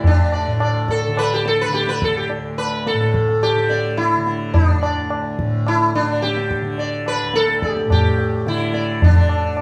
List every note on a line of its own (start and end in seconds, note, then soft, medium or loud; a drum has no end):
0.00 2.31 D2 medium
0.00 0.46 A2 medium
0.00 1.08 D3 medium
0.00 tabla tin medium
0.00 tabla ge medium
0.07 0.86 D4 medium
0.32 0.59 D5 soft
0.32 tabla na medium
0.47 2.94 A2 medium
0.60 0.88 D5 soft
0.60 tabla na medium
0.88 1.18 A4 medium
0.88 tabla ke medium
1.08 1.69 D3 medium
1.17 1.32 B4 medium
1.17 tabla na medium
1.34 1.47 G4 medium
1.45 1.61 A4 medium
1.45 tabla te medium
1.61 1.75 B4 medium
1.69 3.56 D3 medium
1.73 1.88 G4 medium
1.73 tabla te medium
1.88 2.03 B4 medium
1.88 tabla te medium
2.02 2.16 A4 medium
2.02 tabla ke medium
2.16 2.30 G4 medium
2.16 tabla te soft
2.30 4.79 D2 soft
2.30 tabla tin medium
2.58 2.87 B4 medium
2.58 tabla na medium
2.87 3.42 A4 medium
2.87 tabla te medium
2.94 5.39 A2 medium
3.01 tabla te medium
3.14 tabla ke medium
3.29 tabla te medium
3.43 4.01 G4 medium
3.43 tabla na medium
3.56 4.17 D3 soft
3.69 3.96 D5 soft
3.69 tabla te medium
3.97 4.53 E4 medium
3.97 tabla te medium
4.17 6.02 D3 soft
4.27 tabla te medium
4.54 5.34 D4 medium
4.54 tabla tin medium
4.54 tabla ge medium
4.79 7.23 D2 soft
4.79 5.09 D5 soft
4.79 tabla na medium
5.10 tabla na medium
5.39 7.85 A2 medium
5.39 tabla ke medium
5.67 5.95 E4 medium
5.67 tabla na medium
5.94 6.21 D4 medium
5.94 tabla te medium
6.02 6.62 D3 medium
6.22 6.75 G4 medium
6.22 tabla te medium
6.37 tabla te medium
6.51 tabla ke medium
6.62 8.47 D3 soft
6.62 tabla te soft
6.78 7.05 D5 soft
6.78 tabla tin medium
7.06 7.36 B4 medium
7.06 tabla na soft
7.23 9.62 D2 medium
7.34 7.72 A4 medium
7.34 tabla te medium
7.48 tabla te medium
7.62 7.89 D5 soft
7.62 tabla ke soft
7.72 7.92 G4 medium
7.77 tabla te medium
7.86 9.62 A2 medium
7.90 8.48 G4 medium
7.90 tabla na medium
7.90 tabla ge medium
8.18 tabla te medium
8.47 9.09 D3 medium
8.47 9.05 E4 medium
8.47 tabla te medium
8.74 9.00 D5 soft
8.74 tabla te soft
9.02 9.62 D4 medium
9.02 tabla tin medium
9.02 tabla ge medium
9.09 9.62 D3 medium
9.29 tabla na medium
9.57 tabla na medium